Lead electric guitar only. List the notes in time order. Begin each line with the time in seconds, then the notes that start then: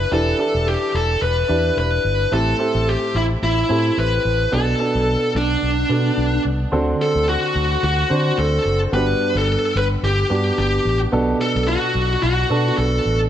Already playing: B4
0.13 A4
0.68 G4
0.95 A4
1.22 B4
1.78 B4
2.33 A4
2.89 G4
3.16 E4
3.43 E4
3.98 B4
4.54 A4
5.37 D4
7.02 A4
7.29 F#4
7.84 F#4
8.39 A4
8.94 B4
9.37 A4
9.77 B4
10.04 G4
10.59 G4
11.41 A4
11.68 F#4
12.23 F#4
12.78 A4